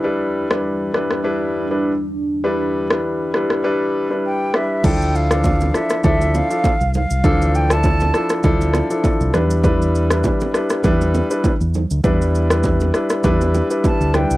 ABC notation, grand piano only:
X:1
M:4/4
L:1/16
Q:"Swing 16ths" 1/4=100
K:Ddor
V:1 name="Grand piano"
[G,DEB]3 [G,DEB]3 [G,DEB]2 [G,DEB]3 [G,DEB] z4 | [G,DEB]3 [G,DEB]3 [G,DEB]2 [G,DEB]3 [G,DEB]3 [G,DEB]2 | [F,DEA]3 [E,F,DA]3 [F,DEA]2 [F,DEA]3 [F,DEA] z4 | [E,F,DA]3 [F,DEA]3 [F,DEA]2 [F,DEA]3 [F,DEA]3 [G,DEB]2 |
[G,DEB]3 [G,DEB]3 [G,DEB]2 [G,DEB]3 [G,DEB] z4 | [G,DEB]3 [G,DEB]3 [G,DEB]2 [G,DEB]3 [G,DEB]3 [G,DEB]2 |]